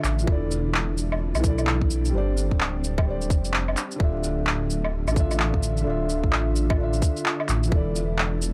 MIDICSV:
0, 0, Header, 1, 5, 480
1, 0, Start_track
1, 0, Key_signature, -1, "minor"
1, 0, Tempo, 465116
1, 285, Time_signature, 4, 2, 24, 8
1, 8805, End_track
2, 0, Start_track
2, 0, Title_t, "Felt piano"
2, 0, Program_c, 0, 0
2, 0, Control_c, 0, 64, 127
2, 0, Note_on_c, 0, 50, 72
2, 0, Note_on_c, 0, 62, 67
2, 0, Note_on_c, 0, 65, 71
2, 0, Note_on_c, 0, 76, 80
2, 243, Note_off_c, 0, 50, 0
2, 244, Note_on_c, 0, 52, 75
2, 255, Note_off_c, 0, 62, 0
2, 269, Note_off_c, 0, 65, 0
2, 273, Note_on_c, 0, 64, 67
2, 285, Note_off_c, 0, 76, 0
2, 299, Control_c, 0, 64, 0
2, 301, Note_on_c, 0, 69, 70
2, 329, Note_on_c, 0, 74, 83
2, 508, Control_c, 0, 64, 127
2, 1424, Note_off_c, 0, 52, 0
2, 1439, Note_on_c, 0, 52, 92
2, 1451, Note_off_c, 0, 64, 0
2, 1466, Note_on_c, 0, 64, 81
2, 1471, Note_off_c, 0, 69, 0
2, 1485, Note_off_c, 0, 74, 0
2, 1495, Note_on_c, 0, 69, 85
2, 1523, Note_on_c, 0, 74, 97
2, 2160, Note_off_c, 0, 52, 0
2, 2161, Note_on_c, 0, 55, 80
2, 2174, Note_off_c, 0, 64, 0
2, 2188, Note_off_c, 0, 69, 0
2, 2193, Note_on_c, 0, 67, 71
2, 2202, Note_off_c, 0, 74, 0
2, 2218, Control_c, 0, 64, 0
2, 2218, Note_on_c, 0, 72, 77
2, 2245, Note_on_c, 0, 74, 89
2, 2399, Control_c, 0, 64, 127
2, 3102, Note_off_c, 0, 55, 0
2, 3117, Note_on_c, 0, 55, 73
2, 3131, Note_off_c, 0, 67, 0
2, 3147, Note_on_c, 0, 67, 68
2, 3149, Note_off_c, 0, 72, 0
2, 3163, Note_off_c, 0, 74, 0
2, 3174, Note_on_c, 0, 72, 65
2, 3203, Note_on_c, 0, 74, 82
2, 4079, Note_off_c, 0, 55, 0
2, 4085, Note_on_c, 0, 50, 74
2, 4094, Note_off_c, 0, 67, 0
2, 4108, Note_off_c, 0, 72, 0
2, 4110, Note_on_c, 0, 62, 67
2, 4122, Note_off_c, 0, 74, 0
2, 4138, Note_on_c, 0, 65, 65
2, 4140, Control_c, 0, 64, 0
2, 4166, Note_on_c, 0, 76, 83
2, 4342, Control_c, 0, 64, 127
2, 5266, Note_off_c, 0, 50, 0
2, 5282, Note_on_c, 0, 50, 87
2, 5295, Note_off_c, 0, 62, 0
2, 5310, Note_off_c, 0, 65, 0
2, 5311, Note_on_c, 0, 62, 83
2, 5323, Note_off_c, 0, 76, 0
2, 5340, Note_on_c, 0, 65, 84
2, 5366, Note_on_c, 0, 76, 95
2, 5986, Note_off_c, 0, 50, 0
2, 6001, Note_on_c, 0, 50, 83
2, 6013, Note_off_c, 0, 62, 0
2, 6029, Note_on_c, 0, 62, 74
2, 6030, Note_off_c, 0, 65, 0
2, 6043, Note_off_c, 0, 76, 0
2, 6057, Note_on_c, 0, 65, 77
2, 6085, Note_on_c, 0, 76, 86
2, 6951, Note_off_c, 0, 50, 0
2, 6967, Note_on_c, 0, 50, 76
2, 6975, Note_off_c, 0, 62, 0
2, 6989, Note_off_c, 0, 65, 0
2, 6995, Note_on_c, 0, 62, 72
2, 7003, Note_off_c, 0, 76, 0
2, 7023, Note_on_c, 0, 65, 71
2, 7050, Note_on_c, 0, 76, 85
2, 7923, Note_on_c, 0, 52, 80
2, 7924, Note_off_c, 0, 50, 0
2, 7938, Note_off_c, 0, 62, 0
2, 7949, Note_on_c, 0, 64, 69
2, 7952, Note_off_c, 0, 65, 0
2, 7965, Note_off_c, 0, 76, 0
2, 7976, Control_c, 0, 64, 0
2, 7977, Note_on_c, 0, 69, 73
2, 8004, Note_on_c, 0, 74, 86
2, 8180, Control_c, 0, 64, 127
2, 8805, Note_off_c, 0, 52, 0
2, 8805, Note_off_c, 0, 64, 0
2, 8805, Note_off_c, 0, 69, 0
2, 8805, Note_off_c, 0, 74, 0
2, 8805, End_track
3, 0, Start_track
3, 0, Title_t, "Ambient pad"
3, 0, Program_c, 1, 92
3, 0, Note_on_c, 1, 50, 79
3, 0, Note_on_c, 1, 62, 74
3, 0, Note_on_c, 1, 65, 83
3, 0, Note_on_c, 1, 76, 72
3, 243, Note_off_c, 1, 50, 0
3, 243, Note_off_c, 1, 65, 0
3, 243, Note_off_c, 1, 76, 0
3, 281, Note_on_c, 1, 52, 80
3, 281, Note_on_c, 1, 60, 75
3, 282, Note_on_c, 1, 69, 88
3, 2184, Note_off_c, 1, 52, 0
3, 2184, Note_off_c, 1, 69, 0
3, 2205, Note_on_c, 1, 67, 87
3, 4085, Note_off_c, 1, 60, 0
3, 4106, Note_off_c, 1, 67, 0
3, 4123, Note_on_c, 1, 50, 80
3, 4123, Note_on_c, 1, 76, 74
3, 4126, Note_on_c, 1, 65, 87
3, 7921, Note_off_c, 1, 62, 0
3, 7925, Note_off_c, 1, 50, 0
3, 7926, Note_off_c, 1, 76, 0
3, 7927, Note_off_c, 1, 65, 0
3, 7971, Note_on_c, 1, 62, 77
3, 7972, Note_on_c, 1, 52, 80
3, 7972, Note_on_c, 1, 60, 74
3, 7975, Note_on_c, 1, 69, 90
3, 8805, Note_off_c, 1, 52, 0
3, 8805, Note_off_c, 1, 60, 0
3, 8805, Note_off_c, 1, 62, 0
3, 8805, Note_off_c, 1, 69, 0
3, 8805, End_track
4, 0, Start_track
4, 0, Title_t, "Detuned saw bass"
4, 0, Program_c, 2, 39
4, 41, Note_on_c, 2, 33, 96
4, 268, Note_off_c, 2, 33, 0
4, 283, Note_on_c, 2, 28, 94
4, 1373, Note_off_c, 2, 28, 0
4, 1392, Note_on_c, 2, 35, 89
4, 2193, Note_off_c, 2, 35, 0
4, 2204, Note_on_c, 2, 31, 90
4, 2574, Note_off_c, 2, 31, 0
4, 2593, Note_on_c, 2, 26, 92
4, 3408, Note_on_c, 2, 29, 80
4, 3424, Note_off_c, 2, 26, 0
4, 3875, Note_off_c, 2, 29, 0
4, 4128, Note_on_c, 2, 26, 93
4, 5216, Note_off_c, 2, 26, 0
4, 5233, Note_on_c, 2, 33, 91
4, 6033, Note_off_c, 2, 33, 0
4, 6045, Note_on_c, 2, 26, 88
4, 6415, Note_off_c, 2, 26, 0
4, 6435, Note_on_c, 2, 33, 94
4, 7234, Note_off_c, 2, 33, 0
4, 7726, Note_on_c, 2, 33, 96
4, 7951, Note_off_c, 2, 33, 0
4, 7966, Note_on_c, 2, 28, 91
4, 8805, Note_off_c, 2, 28, 0
4, 8805, End_track
5, 0, Start_track
5, 0, Title_t, "Drums"
5, 46, Note_on_c, 9, 39, 58
5, 46, Note_on_c, 9, 82, 57
5, 149, Note_off_c, 9, 39, 0
5, 149, Note_off_c, 9, 82, 0
5, 196, Note_on_c, 9, 82, 31
5, 283, Note_on_c, 9, 36, 110
5, 299, Note_off_c, 9, 82, 0
5, 386, Note_off_c, 9, 36, 0
5, 528, Note_on_c, 9, 82, 54
5, 631, Note_off_c, 9, 82, 0
5, 768, Note_on_c, 9, 39, 102
5, 871, Note_off_c, 9, 39, 0
5, 1008, Note_on_c, 9, 82, 54
5, 1111, Note_off_c, 9, 82, 0
5, 1157, Note_on_c, 9, 77, 53
5, 1260, Note_off_c, 9, 77, 0
5, 1394, Note_on_c, 9, 77, 58
5, 1394, Note_on_c, 9, 82, 31
5, 1484, Note_on_c, 9, 36, 105
5, 1487, Note_off_c, 9, 82, 0
5, 1487, Note_on_c, 9, 82, 53
5, 1497, Note_off_c, 9, 77, 0
5, 1587, Note_off_c, 9, 36, 0
5, 1590, Note_off_c, 9, 82, 0
5, 1634, Note_on_c, 9, 77, 34
5, 1634, Note_on_c, 9, 82, 30
5, 1724, Note_on_c, 9, 39, 105
5, 1737, Note_off_c, 9, 77, 0
5, 1737, Note_off_c, 9, 82, 0
5, 1827, Note_off_c, 9, 39, 0
5, 1873, Note_on_c, 9, 36, 62
5, 1966, Note_on_c, 9, 82, 54
5, 1976, Note_off_c, 9, 36, 0
5, 2069, Note_off_c, 9, 82, 0
5, 2118, Note_on_c, 9, 82, 32
5, 2221, Note_off_c, 9, 82, 0
5, 2449, Note_on_c, 9, 82, 51
5, 2553, Note_off_c, 9, 82, 0
5, 2594, Note_on_c, 9, 36, 59
5, 2688, Note_on_c, 9, 39, 99
5, 2697, Note_off_c, 9, 36, 0
5, 2791, Note_off_c, 9, 39, 0
5, 2931, Note_on_c, 9, 82, 49
5, 3034, Note_off_c, 9, 82, 0
5, 3075, Note_on_c, 9, 36, 107
5, 3078, Note_on_c, 9, 77, 56
5, 3178, Note_off_c, 9, 36, 0
5, 3181, Note_off_c, 9, 77, 0
5, 3319, Note_on_c, 9, 82, 29
5, 3407, Note_on_c, 9, 36, 108
5, 3411, Note_off_c, 9, 82, 0
5, 3411, Note_on_c, 9, 82, 51
5, 3510, Note_off_c, 9, 36, 0
5, 3514, Note_off_c, 9, 82, 0
5, 3558, Note_on_c, 9, 82, 30
5, 3649, Note_on_c, 9, 39, 100
5, 3661, Note_off_c, 9, 82, 0
5, 3752, Note_off_c, 9, 39, 0
5, 3800, Note_on_c, 9, 77, 47
5, 3890, Note_on_c, 9, 39, 61
5, 3890, Note_on_c, 9, 82, 52
5, 3903, Note_off_c, 9, 77, 0
5, 3994, Note_off_c, 9, 39, 0
5, 3994, Note_off_c, 9, 82, 0
5, 4039, Note_on_c, 9, 82, 30
5, 4127, Note_on_c, 9, 36, 109
5, 4142, Note_off_c, 9, 82, 0
5, 4230, Note_off_c, 9, 36, 0
5, 4371, Note_on_c, 9, 82, 52
5, 4474, Note_off_c, 9, 82, 0
5, 4611, Note_on_c, 9, 39, 98
5, 4714, Note_off_c, 9, 39, 0
5, 4852, Note_on_c, 9, 82, 49
5, 4955, Note_off_c, 9, 82, 0
5, 5000, Note_on_c, 9, 77, 53
5, 5103, Note_off_c, 9, 77, 0
5, 5239, Note_on_c, 9, 77, 60
5, 5239, Note_on_c, 9, 82, 28
5, 5327, Note_on_c, 9, 36, 101
5, 5332, Note_off_c, 9, 82, 0
5, 5332, Note_on_c, 9, 82, 49
5, 5342, Note_off_c, 9, 77, 0
5, 5430, Note_off_c, 9, 36, 0
5, 5436, Note_off_c, 9, 82, 0
5, 5481, Note_on_c, 9, 77, 35
5, 5481, Note_on_c, 9, 82, 28
5, 5569, Note_on_c, 9, 39, 99
5, 5584, Note_off_c, 9, 77, 0
5, 5584, Note_off_c, 9, 82, 0
5, 5672, Note_off_c, 9, 39, 0
5, 5716, Note_on_c, 9, 36, 59
5, 5810, Note_on_c, 9, 82, 51
5, 5819, Note_off_c, 9, 36, 0
5, 5913, Note_off_c, 9, 82, 0
5, 5957, Note_on_c, 9, 82, 28
5, 6060, Note_off_c, 9, 82, 0
5, 6289, Note_on_c, 9, 82, 50
5, 6392, Note_off_c, 9, 82, 0
5, 6435, Note_on_c, 9, 36, 57
5, 6528, Note_on_c, 9, 39, 94
5, 6538, Note_off_c, 9, 36, 0
5, 6632, Note_off_c, 9, 39, 0
5, 6768, Note_on_c, 9, 82, 51
5, 6871, Note_off_c, 9, 82, 0
5, 6915, Note_on_c, 9, 36, 95
5, 6917, Note_on_c, 9, 77, 56
5, 7018, Note_off_c, 9, 36, 0
5, 7020, Note_off_c, 9, 77, 0
5, 7156, Note_on_c, 9, 82, 29
5, 7246, Note_on_c, 9, 36, 98
5, 7249, Note_off_c, 9, 82, 0
5, 7249, Note_on_c, 9, 82, 51
5, 7349, Note_off_c, 9, 36, 0
5, 7352, Note_off_c, 9, 82, 0
5, 7397, Note_on_c, 9, 82, 29
5, 7490, Note_on_c, 9, 39, 98
5, 7501, Note_off_c, 9, 82, 0
5, 7593, Note_off_c, 9, 39, 0
5, 7636, Note_on_c, 9, 77, 52
5, 7728, Note_on_c, 9, 39, 56
5, 7728, Note_on_c, 9, 82, 53
5, 7740, Note_off_c, 9, 77, 0
5, 7831, Note_off_c, 9, 39, 0
5, 7831, Note_off_c, 9, 82, 0
5, 7879, Note_on_c, 9, 82, 28
5, 7965, Note_on_c, 9, 36, 107
5, 7982, Note_off_c, 9, 82, 0
5, 8068, Note_off_c, 9, 36, 0
5, 8210, Note_on_c, 9, 82, 52
5, 8313, Note_off_c, 9, 82, 0
5, 8446, Note_on_c, 9, 39, 92
5, 8550, Note_off_c, 9, 39, 0
5, 8689, Note_on_c, 9, 82, 53
5, 8792, Note_off_c, 9, 82, 0
5, 8805, End_track
0, 0, End_of_file